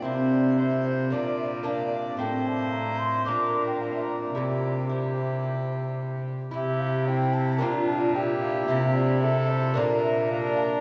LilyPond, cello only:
\new Staff \with { instrumentName = "Cello" } { \clef bass \time 4/4 \key c \mixolydian \tempo 4 = 111 c2 bes,2 | a,2 bes,2 | c2.~ c8 r8 | c2 bes,2 |
c2 bes,2 | }